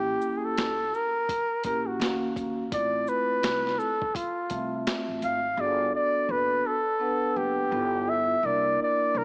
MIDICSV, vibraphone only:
0, 0, Header, 1, 2, 480
1, 0, Start_track
1, 0, Tempo, 714286
1, 1828, Time_signature, 4, 2, 24, 8
1, 6211, End_track
2, 0, Start_track
2, 0, Title_t, "Vibraphone"
2, 0, Program_c, 0, 11
2, 0, Note_on_c, 0, 58, 83
2, 0, Note_on_c, 0, 61, 80
2, 0, Note_on_c, 0, 64, 82
2, 0, Note_on_c, 0, 67, 94
2, 445, Note_off_c, 0, 58, 0
2, 446, Note_off_c, 0, 61, 0
2, 448, Note_off_c, 0, 64, 0
2, 472, Note_off_c, 0, 67, 0
2, 1109, Note_on_c, 0, 58, 70
2, 1110, Note_on_c, 0, 64, 63
2, 1111, Note_on_c, 0, 61, 70
2, 1116, Note_on_c, 0, 67, 79
2, 1340, Note_off_c, 0, 58, 0
2, 1343, Note_off_c, 0, 61, 0
2, 1348, Note_on_c, 0, 58, 76
2, 1349, Note_off_c, 0, 64, 0
2, 1351, Note_on_c, 0, 61, 70
2, 1352, Note_off_c, 0, 67, 0
2, 1354, Note_on_c, 0, 66, 81
2, 1354, Note_on_c, 0, 77, 62
2, 1755, Note_off_c, 0, 58, 0
2, 1757, Note_off_c, 0, 61, 0
2, 1758, Note_off_c, 0, 77, 0
2, 1759, Note_off_c, 0, 66, 0
2, 1822, Note_on_c, 0, 57, 66
2, 1826, Note_on_c, 0, 64, 64
2, 1827, Note_on_c, 0, 60, 62
2, 1828, Note_on_c, 0, 65, 69
2, 2586, Note_off_c, 0, 57, 0
2, 2589, Note_off_c, 0, 60, 0
2, 2589, Note_off_c, 0, 64, 0
2, 2590, Note_off_c, 0, 65, 0
2, 3024, Note_on_c, 0, 57, 70
2, 3028, Note_on_c, 0, 60, 63
2, 3031, Note_on_c, 0, 76, 60
2, 3034, Note_on_c, 0, 65, 68
2, 3612, Note_off_c, 0, 57, 0
2, 3614, Note_off_c, 0, 60, 0
2, 3615, Note_off_c, 0, 76, 0
2, 3617, Note_off_c, 0, 65, 0
2, 3741, Note_on_c, 0, 59, 67
2, 3742, Note_on_c, 0, 62, 62
2, 3748, Note_on_c, 0, 66, 61
2, 3749, Note_on_c, 0, 68, 61
2, 3791, Note_on_c, 0, 69, 78
2, 3803, Note_off_c, 0, 68, 0
2, 4506, Note_off_c, 0, 59, 0
2, 4506, Note_off_c, 0, 62, 0
2, 4509, Note_off_c, 0, 66, 0
2, 4531, Note_off_c, 0, 69, 0
2, 4698, Note_on_c, 0, 59, 69
2, 4703, Note_on_c, 0, 62, 64
2, 4708, Note_on_c, 0, 71, 69
2, 4708, Note_on_c, 0, 78, 55
2, 5176, Note_off_c, 0, 59, 0
2, 5184, Note_on_c, 0, 59, 82
2, 5184, Note_on_c, 0, 64, 70
2, 5185, Note_off_c, 0, 62, 0
2, 5188, Note_off_c, 0, 71, 0
2, 5188, Note_off_c, 0, 78, 0
2, 5189, Note_on_c, 0, 65, 69
2, 5192, Note_on_c, 0, 69, 82
2, 5593, Note_off_c, 0, 59, 0
2, 5593, Note_off_c, 0, 64, 0
2, 5596, Note_off_c, 0, 65, 0
2, 5598, Note_off_c, 0, 69, 0
2, 5664, Note_on_c, 0, 58, 73
2, 5667, Note_on_c, 0, 62, 64
2, 5671, Note_on_c, 0, 64, 62
2, 5675, Note_on_c, 0, 70, 78
2, 6211, Note_off_c, 0, 58, 0
2, 6211, Note_off_c, 0, 62, 0
2, 6211, Note_off_c, 0, 64, 0
2, 6211, Note_off_c, 0, 70, 0
2, 6211, End_track
0, 0, End_of_file